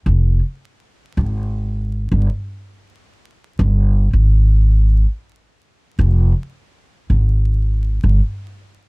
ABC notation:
X:1
M:4/4
L:1/16
Q:"Swing 16ths" 1/4=81
K:Ab
V:1 name="Upright bass" clef=bass
F,,,2 z4 A,,,4- A,,, G,,, z4 | z3 G,,,3 A,,,4- A,,, z4 z | F,,,2 z4 A,,,4- A,,, G,,, z4 |]